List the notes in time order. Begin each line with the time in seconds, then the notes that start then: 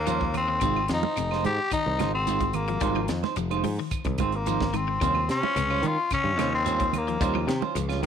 Already playing: D#2 A#3
0.07 F3 G3 C#4 F4 C5, closed hi-hat, high conga, shekere
0.21 kick, high conga
0.34 D#3 C4, muted clean electric guitar stroke, closed hi-hat, low conga, claves, shekere
0.48 D#3, muted clean electric guitar stroke
0.61 G#1 C3 G#3 D#4 F4, muted clean electric guitar stroke, kick, closed hi-hat, shekere
0.76 claves
0.88 F2 D#3, muted clean electric guitar stroke, snare, closed hi-hat, shekere
0.93 D#4
1.03 D#4 F4 C5, high conga
1.17 F1 C3, muted clean electric guitar stroke, closed hi-hat, shekere
1.31 G#3 D#4 F4 C5, snare, claves
1.44 G#2 G4, closed hi-hat, high conga, low conga, shekere
1.59 muted clean electric guitar stroke
1.71 D#3 D#4, muted fingered electric bass stroke, kick, closed hi-hat, claves, shekere
1.86 C2, muted clean electric guitar stroke, low conga
1.99 G#1 C#3 G#3 D#4 F4 C5, snare, closed hi-hat, high conga, claves, shekere
2.14 C4, muted clean electric guitar stroke
2.27 G#3 D#4 F4 C5, closed hi-hat, high conga, shekere
2.41 D#3, kick, closed hi-hat, high conga
2.53 A#3, muted clean electric guitar stroke, closed hi-hat, high conga, low conga, claves, shekere
2.68 F3, muted clean electric guitar stroke, closed hi-hat
2.81 G#1 G3 G#3 D#4 F4 C5, kick, closed hi-hat, shekere
2.95 F3, high conga, claves
3.08 F2 D#3, muted clean electric guitar stroke, snare, closed hi-hat, shekere
3.23 D#4 C5, snare, high conga
3.36 F1 F3, muted clean electric guitar stroke, closed hi-hat, shekere
3.51 G#3 D#4 F4 C5, closed hi-hat, claves
3.64 G#2 F3, muted clean electric guitar stroke, open hi-hat, high conga, low conga, shekere
3.79 D#3, muted clean electric guitar stroke
3.91 muted fingered electric bass stroke, kick, closed hi-hat, claves, shekere
4.04 C2 D#3, muted clean electric guitar stroke, kick, closed hi-hat, high conga, low conga
4.18 G#1 G#3 C4 D#4 F4 C5, kick, closed hi-hat, high conga, claves, shekere
4.32 A#3, muted clean electric guitar stroke, closed hi-hat
4.46 F3 G#3 D#4 F4 C5, closed hi-hat, high conga, shekere
4.61 kick, snare, high conga
4.74 D#3 C4, muted clean electric guitar stroke, closed hi-hat, high conga, low conga, claves, shekere
4.88 D#3, muted clean electric guitar stroke
5.01 D#2 C3 G3 C#4 F4 C5, kick, closed hi-hat, shekere
5.15 high conga, claves
5.29 C3 C#4, muted clean electric guitar stroke, snare, closed hi-hat, shekere
5.43 C#4 F4 C5, high conga
5.56 C#2 C3, muted clean electric guitar stroke, closed hi-hat, shekere
5.70 G3 C#4 F4 C5, claves
5.82 D#3, muted clean electric guitar stroke, closed hi-hat, high conga, low conga, shekere
5.88 F4
5.98 muted clean electric guitar stroke
6.11 C#3 C#4, muted fingered electric bass stroke, kick, closed hi-hat, claves, shekere
6.24 G2, muted clean electric guitar stroke, low conga
6.38 D#2 C3 G3 C#4 F4 C5, snare, closed hi-hat, high conga, claves, shekere
6.52 C4, muted clean electric guitar stroke
6.65 G3 C#4 F4 C5, closed hi-hat, high conga, shekere
6.80 D#3, kick, closed hi-hat, high conga
6.93 muted clean electric guitar stroke, closed hi-hat, high conga, low conga, claves, shekere
6.97 A#3
7.07 F3, muted clean electric guitar stroke, closed hi-hat
7.21 D#2 G3 C#4 F4 C5, kick, closed hi-hat, shekere
7.35 F3, high conga, claves
7.47 C3 D#3, muted clean electric guitar stroke, snare, closed hi-hat, shekere
7.61 C#4 F4 C5, high conga
7.75 C#2 F3, muted clean electric guitar stroke, closed hi-hat, shekere
7.89 G3 C#4 F4, snare, closed hi-hat, claves
8.02 D#3, muted clean electric guitar stroke